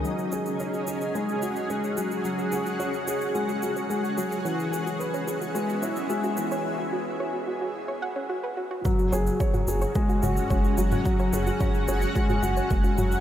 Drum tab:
SH |xxxxxxxxxxxxxxxx|xxxxxxxxxxxxxxxx|xxxxxxxxxxxxxxxx|----------------|
T2 |----------------|----------------|----------------|----------------|
BD |----------------|----------------|----------------|----------------|

SH |xxxxxxxxxxxxxxxx|xxxxxxxxxxxxxxxx|
T2 |o----o----o----o|----o----o----o-|
BD |o---o---o---o---|o---o---o---o---|